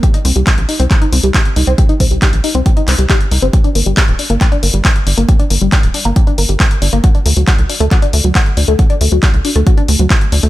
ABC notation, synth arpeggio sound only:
X:1
M:4/4
L:1/16
Q:1/4=137
K:Gm
V:1 name="Synth arpeggio sound"
G E C G, G z E C G E C G, G z E C | G E C G, G z E C G E C G, G z E C | G D B, G, G z D B, G D B, G, G z D B, | G D B, G, G z D B, G D B, G, G z D B, |
^F D A, ^F, F z D A, F D A, F, F z D A, | ^F D A, ^F, F z D A, F D A, F, F z D A, |]